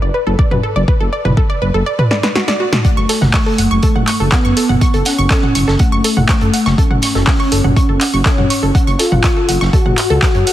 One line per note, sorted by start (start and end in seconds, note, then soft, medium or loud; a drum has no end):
0.02 0.10 F#1 medium
0.02 0.08 D5 medium
0.14 0.20 B4 medium
0.27 0.35 F#1 medium
0.27 0.32 A4 medium
0.39 0.44 D5 medium
0.39 kick loud
0.51 0.60 F#2 medium
0.51 0.57 B4 medium
0.51 mid tom medium
0.63 0.69 A4 medium
0.76 0.84 F#1 medium
0.76 0.81 D5 medium
0.88 0.94 B4 medium
0.88 kick loud
1.00 1.09 F#1 medium
1.00 1.06 A4 medium
1.13 1.18 D5 medium
1.25 1.33 F#1 medium
1.25 1.31 B4 medium
1.25 mid tom medium
1.37 1.43 A4 medium
1.37 kick loud
1.50 1.55 D5 medium
1.62 1.70 F#1 medium
1.62 1.67 B4 medium
1.74 1.83 F#1 medium
1.74 1.80 A4 medium
1.86 1.92 D5 medium
1.99 2.04 B4 medium
1.99 mid tom medium
2.11 2.19 D5 medium
2.11 snare medium
2.23 2.29 B4 medium
2.23 snare medium
2.35 2.41 F#4 medium
2.35 snare medium
2.48 2.51 D5 loud
2.48 snare medium
2.60 2.66 F#4 medium
2.73 2.78 A5 medium
2.73 snare medium
2.73 mid tom medium
2.85 4.23 A3 loud
2.85 2.90 F#5 medium
2.85 kick loud
2.85 closed hi-hat medium
2.97 3.06 F#1 medium
2.97 3.00 C#6 loud
3.09 3.15 A4 medium
3.09 snare soft
3.09 closed hi-hat medium
3.09 open hi-hat loud
3.21 3.30 F#1 medium
3.21 3.27 F#5 medium
3.21 snare medium
3.21 mid tom medium
3.34 3.37 C#6 loud
3.34 kick loud
3.34 snare loud
3.34 clap loud
3.34 open hi-hat medium
3.46 3.52 A4 medium
3.58 3.67 F#1 medium
3.58 3.64 F#5 medium
3.58 closed hi-hat medium
3.58 open hi-hat loud
3.71 3.79 F#1 medium
3.71 3.74 C#6 loud
3.83 3.89 A4 medium
3.83 kick loud
3.83 closed hi-hat medium
3.95 4.04 F#1 medium
3.95 4.01 F#5 medium
3.95 mid tom medium
4.07 4.11 C#6 loud
4.07 clap medium
4.07 closed hi-hat medium
4.07 open hi-hat loud
4.20 4.28 F#1 medium
4.20 4.26 A4 medium
4.32 4.96 B3 loud
4.32 4.38 F#5 medium
4.32 kick loud
4.32 snare loud
4.32 clap loud
4.32 closed hi-hat medium
4.45 4.53 F#2 medium
4.45 4.48 C#6 loud
4.57 4.62 A4 medium
4.57 closed hi-hat medium
4.57 open hi-hat loud
4.69 4.78 F#1 medium
4.69 4.75 F#5 medium
4.69 mid tom medium
4.81 4.85 C#6 loud
4.81 kick loud
4.81 closed hi-hat medium
4.94 5.02 F#1 medium
4.94 4.99 A4 medium
4.94 closed hi-hat soft
5.05 5.81 C#4 loud
5.05 5.12 F#5 medium
5.05 snare medium
5.05 closed hi-hat medium
5.05 open hi-hat loud
5.18 5.27 F#1 medium
5.18 5.22 C#6 loud
5.31 5.36 A4 medium
5.31 kick loud
5.31 snare loud
5.31 clap loud
5.31 closed hi-hat medium
5.43 5.49 F#5 medium
5.43 mid tom medium
5.55 5.64 F#1 loud
5.55 5.59 C#6 loud
5.55 closed hi-hat medium
5.55 open hi-hat loud
5.68 5.76 F#1 medium
5.68 5.73 A4 medium
5.68 snare medium
5.79 6.80 A3 loud
5.79 5.85 F#5 medium
5.79 kick loud
5.79 closed hi-hat medium
5.92 6.01 F#1 medium
5.92 5.96 C#6 loud
6.04 6.10 A4 medium
6.04 closed hi-hat medium
6.04 open hi-hat loud
6.17 6.25 F#1 medium
6.17 6.22 F#5 medium
6.17 mid tom medium
6.28 6.32 C#6 loud
6.28 kick loud
6.28 snare loud
6.28 clap loud
6.28 closed hi-hat medium
6.41 6.50 F#2 medium
6.41 6.47 A4 medium
6.41 closed hi-hat soft
6.54 6.59 F#5 medium
6.54 closed hi-hat medium
6.54 open hi-hat loud
6.66 6.74 F#1 medium
6.66 6.69 C#6 loud
6.66 snare soft
6.78 8.16 C#4 loud
6.78 6.84 A4 medium
6.78 kick loud
6.78 closed hi-hat medium
6.91 6.99 F#1 medium
6.91 6.96 F#5 medium
6.91 mid tom medium
7.02 7.06 C#6 loud
7.02 snare soft
7.02 closed hi-hat medium
7.02 open hi-hat loud
7.15 7.24 F#1 medium
7.15 7.21 A4 medium
7.15 snare medium
7.26 7.33 F#5 medium
7.26 kick loud
7.26 snare loud
7.26 clap loud
7.26 open hi-hat medium
7.40 7.43 C#6 loud
7.52 7.61 F#1 medium
7.52 7.57 A4 medium
7.52 closed hi-hat medium
7.52 open hi-hat loud
7.64 7.73 F#1 medium
7.64 7.70 F#5 medium
7.64 mid tom medium
7.76 7.80 C#6 loud
7.76 kick loud
7.76 closed hi-hat medium
7.89 7.97 F#1 medium
7.89 7.94 A4 medium
8.01 8.07 F#5 medium
8.01 clap medium
8.01 closed hi-hat medium
8.01 open hi-hat loud
8.14 8.22 F#1 medium
8.14 8.17 C#6 loud
8.26 8.90 C#4 loud
8.26 8.31 A4 medium
8.26 kick loud
8.26 snare loud
8.26 clap loud
8.26 closed hi-hat medium
8.38 8.47 F#2 medium
8.38 8.44 F#5 medium
8.38 mid tom medium
8.50 8.54 C#6 loud
8.50 closed hi-hat medium
8.50 open hi-hat loud
8.63 8.71 F#1 medium
8.63 8.68 A4 medium
8.75 8.80 F#5 medium
8.75 kick loud
8.75 closed hi-hat medium
8.87 8.96 F#1 medium
8.87 8.91 C#6 loud
8.87 closed hi-hat soft
8.99 9.64 F4 loud
8.99 9.05 A4 medium
8.99 snare medium
8.99 closed hi-hat medium
8.99 open hi-hat loud
9.12 9.20 F#1 medium
9.12 9.17 F#5 medium
9.12 mid tom medium
9.24 9.27 C#6 loud
9.24 kick loud
9.24 snare loud
9.24 clap loud
9.24 closed hi-hat medium
9.37 9.42 A4 medium
9.49 9.57 F#1 loud
9.49 9.54 F#5 medium
9.49 closed hi-hat medium
9.49 open hi-hat loud
9.61 9.70 F#1 medium
9.61 9.64 C#6 loud
9.61 snare soft
9.73 10.53 F#4 loud
9.73 9.79 A4 medium
9.73 kick loud
9.73 closed hi-hat medium
9.86 9.94 F#1 medium
9.86 9.91 F#5 medium
9.86 mid tom medium
9.97 10.06 F#4 medium
9.97 clap medium
9.97 closed hi-hat medium
9.97 open hi-hat loud
10.10 10.19 C#2 medium
10.10 10.14 A4 loud
10.22 10.28 F#5 medium
10.22 kick loud
10.22 snare loud
10.22 clap loud
10.22 closed hi-hat medium
10.35 10.43 F#2 medium
10.35 10.38 C#5 medium
10.35 closed hi-hat soft
10.47 10.53 F#5 medium
10.47 closed hi-hat medium
10.47 open hi-hat loud